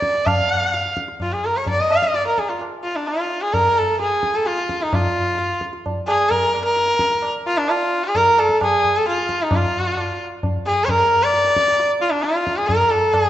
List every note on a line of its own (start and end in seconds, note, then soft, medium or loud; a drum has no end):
0.00 0.27 D5 medium
0.00 tabla ke medium
0.15 tabla te medium
0.26 0.96 F5 medium
0.26 tabla na medium
0.26 tabla ge medium
0.74 tabla te medium
0.86 tabla te medium
0.97 tabla ke medium
1.08 tabla te medium
1.20 1.34 F4 medium
1.20 tabla tin medium
1.20 tabla ge medium
1.33 1.47 G#4 medium
1.45 1.58 A#4 medium
1.57 1.68 C#5 medium
1.66 1.82 D5 medium
1.66 tabla tin medium
1.66 tabla ge medium
1.81 1.94 D#5 medium
1.90 2.05 F5 medium
1.90 tabla na medium
2.02 2.16 D#5 medium
2.02 tabla ke medium
2.14 2.26 D5 medium
2.14 tabla te medium
2.27 2.40 A#4 medium
2.27 tabla te medium
2.38 2.51 G#4 medium
2.38 tabla ke medium
2.49 2.61 F4 medium
2.49 tabla te medium
2.61 tabla na medium
2.84 2.97 F4 medium
2.96 3.09 D4 medium
3.07 3.43 F4 medium
3.07 tabla na medium
3.42 3.55 G#4 medium
3.53 3.79 A#4 loud
3.53 tabla tin medium
3.53 tabla ge medium
3.78 3.99 A4 medium
4.00 4.37 G#4 medium
4.00 tabla te medium
4.11 tabla te medium
4.23 tabla ke medium
4.34 4.48 A4 medium
4.34 tabla te medium
4.46 4.84 F4 medium
4.46 tabla te medium
4.58 tabla te medium
4.69 tabla ke medium
4.81 4.96 D#4 medium
4.81 tabla te medium
4.93 5.63 F4 medium
4.93 tabla na loud
4.93 tabla ge medium
5.39 tabla te medium
5.50 tabla te medium
5.61 tabla ke medium
5.73 tabla te medium
5.86 tabla tin medium
5.86 tabla ge medium
6.07 6.32 G#4 loud
6.07 tabla na medium
6.30 6.64 A#4 loud
6.30 tabla tin medium
6.30 tabla ge medium
6.54 tabla na medium
6.64 7.30 A#4 loud
6.76 tabla te medium
6.88 tabla te medium
6.99 tabla ke medium
7.11 tabla te medium
7.22 tabla na medium
7.47 7.59 F4 medium
7.58 7.71 D4 medium
7.68 8.06 F4 medium
7.68 tabla na medium
8.04 8.17 G#4 loud
8.15 8.41 A#4 loud
8.15 tabla tin medium
8.15 tabla ge medium
8.38 8.61 A4 medium
8.38 tabla na medium
8.49 tabla ke medium
8.61 8.99 G#4 loud
8.61 tabla na medium
8.61 tabla ge medium
8.84 tabla ge medium
8.97 9.07 A4 medium
9.07 9.44 F4 medium
9.07 tabla te medium
9.18 tabla te medium
9.29 tabla ke medium
9.40 9.57 D#4 medium
9.40 tabla te medium
9.51 tabla na loud
9.51 tabla ge loud
9.56 10.22 F4 medium
9.97 tabla na medium
10.43 tabla tin medium
10.43 tabla ge medium
10.66 10.86 G#4 medium
10.85 10.91 C#5 medium
10.85 tabla tin medium
10.85 tabla ge medium
10.90 11.25 A#4 loud
11.23 11.91 D5 loud
11.34 tabla te medium
11.45 tabla te medium
11.57 tabla ke medium
11.68 tabla te medium
11.80 tabla te medium
12.01 12.13 F4 medium
12.01 tabla te medium
12.11 12.24 D4 medium
12.23 12.58 F4 medium
12.23 tabla te medium
12.36 tabla te medium
12.47 tabla ke medium
12.57 12.69 G#4 medium
12.57 tabla te medium
12.67 12.92 A#4 loud
12.67 tabla tin medium
12.67 tabla ge medium
12.90 13.15 A4 medium
12.90 tabla na medium
13.13 13.30 G#4 loud
13.13 tabla na medium
13.13 tabla ge medium